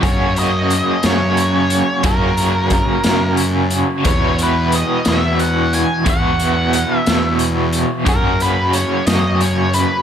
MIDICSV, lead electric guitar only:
0, 0, Header, 1, 2, 480
1, 0, Start_track
1, 0, Tempo, 669643
1, 22, Time_signature, 6, 3, 24, 8
1, 7183, End_track
2, 0, Start_track
2, 0, Title_t, "Lead electric guitar"
2, 0, Program_c, 0, 29
2, 31, Note_on_c, 0, 73, 101
2, 251, Note_off_c, 0, 73, 0
2, 278, Note_on_c, 0, 75, 112
2, 761, Note_off_c, 0, 75, 0
2, 764, Note_on_c, 0, 73, 87
2, 1475, Note_on_c, 0, 70, 74
2, 1498, Note_off_c, 0, 73, 0
2, 2404, Note_off_c, 0, 70, 0
2, 2916, Note_on_c, 0, 73, 84
2, 3136, Note_off_c, 0, 73, 0
2, 3174, Note_on_c, 0, 71, 77
2, 3386, Note_off_c, 0, 71, 0
2, 3406, Note_on_c, 0, 75, 84
2, 3645, Note_off_c, 0, 75, 0
2, 3649, Note_on_c, 0, 76, 85
2, 3869, Note_on_c, 0, 78, 92
2, 3886, Note_off_c, 0, 76, 0
2, 4116, Note_off_c, 0, 78, 0
2, 4119, Note_on_c, 0, 80, 88
2, 4338, Note_off_c, 0, 80, 0
2, 4369, Note_on_c, 0, 78, 93
2, 4993, Note_off_c, 0, 78, 0
2, 4993, Note_on_c, 0, 76, 93
2, 5289, Note_off_c, 0, 76, 0
2, 5801, Note_on_c, 0, 70, 89
2, 6037, Note_off_c, 0, 70, 0
2, 6039, Note_on_c, 0, 71, 92
2, 6256, Note_off_c, 0, 71, 0
2, 6273, Note_on_c, 0, 73, 94
2, 6492, Note_off_c, 0, 73, 0
2, 6502, Note_on_c, 0, 75, 101
2, 6746, Note_off_c, 0, 75, 0
2, 6749, Note_on_c, 0, 73, 84
2, 6969, Note_off_c, 0, 73, 0
2, 6984, Note_on_c, 0, 71, 90
2, 7183, Note_off_c, 0, 71, 0
2, 7183, End_track
0, 0, End_of_file